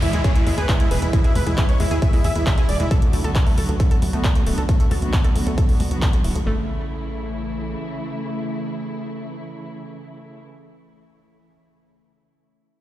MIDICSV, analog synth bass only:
0, 0, Header, 1, 2, 480
1, 0, Start_track
1, 0, Key_signature, 3, "major"
1, 0, Tempo, 444444
1, 1224, Time_signature, 4, 2, 24, 8
1, 13834, End_track
2, 0, Start_track
2, 0, Title_t, "Analog synth bass"
2, 0, Program_c, 0, 38
2, 24, Note_on_c, 0, 40, 94
2, 100, Note_off_c, 0, 40, 0
2, 144, Note_on_c, 0, 40, 87
2, 220, Note_off_c, 0, 40, 0
2, 504, Note_on_c, 0, 40, 97
2, 580, Note_off_c, 0, 40, 0
2, 624, Note_on_c, 0, 40, 81
2, 700, Note_off_c, 0, 40, 0
2, 983, Note_on_c, 0, 28, 94
2, 1060, Note_off_c, 0, 28, 0
2, 1104, Note_on_c, 0, 40, 81
2, 1180, Note_off_c, 0, 40, 0
2, 1464, Note_on_c, 0, 40, 92
2, 1540, Note_off_c, 0, 40, 0
2, 1584, Note_on_c, 0, 40, 80
2, 1660, Note_off_c, 0, 40, 0
2, 1944, Note_on_c, 0, 40, 90
2, 2020, Note_off_c, 0, 40, 0
2, 2064, Note_on_c, 0, 40, 86
2, 2140, Note_off_c, 0, 40, 0
2, 2424, Note_on_c, 0, 40, 95
2, 2500, Note_off_c, 0, 40, 0
2, 2544, Note_on_c, 0, 40, 81
2, 2620, Note_off_c, 0, 40, 0
2, 2904, Note_on_c, 0, 28, 91
2, 2980, Note_off_c, 0, 28, 0
2, 3024, Note_on_c, 0, 40, 81
2, 3100, Note_off_c, 0, 40, 0
2, 3384, Note_on_c, 0, 38, 89
2, 3460, Note_off_c, 0, 38, 0
2, 3504, Note_on_c, 0, 38, 79
2, 3580, Note_off_c, 0, 38, 0
2, 3864, Note_on_c, 0, 38, 89
2, 3940, Note_off_c, 0, 38, 0
2, 3984, Note_on_c, 0, 38, 84
2, 4060, Note_off_c, 0, 38, 0
2, 4344, Note_on_c, 0, 38, 94
2, 4420, Note_off_c, 0, 38, 0
2, 4464, Note_on_c, 0, 38, 80
2, 4540, Note_off_c, 0, 38, 0
2, 4824, Note_on_c, 0, 26, 92
2, 4900, Note_off_c, 0, 26, 0
2, 4943, Note_on_c, 0, 38, 80
2, 5020, Note_off_c, 0, 38, 0
2, 5304, Note_on_c, 0, 38, 92
2, 5380, Note_off_c, 0, 38, 0
2, 5423, Note_on_c, 0, 38, 80
2, 5500, Note_off_c, 0, 38, 0
2, 5784, Note_on_c, 0, 38, 92
2, 5860, Note_off_c, 0, 38, 0
2, 5904, Note_on_c, 0, 38, 87
2, 5980, Note_off_c, 0, 38, 0
2, 6264, Note_on_c, 0, 38, 93
2, 6340, Note_off_c, 0, 38, 0
2, 6384, Note_on_c, 0, 38, 77
2, 6460, Note_off_c, 0, 38, 0
2, 6743, Note_on_c, 0, 26, 90
2, 6820, Note_off_c, 0, 26, 0
2, 6864, Note_on_c, 0, 38, 78
2, 6940, Note_off_c, 0, 38, 0
2, 6984, Note_on_c, 0, 33, 95
2, 8380, Note_off_c, 0, 33, 0
2, 13834, End_track
0, 0, End_of_file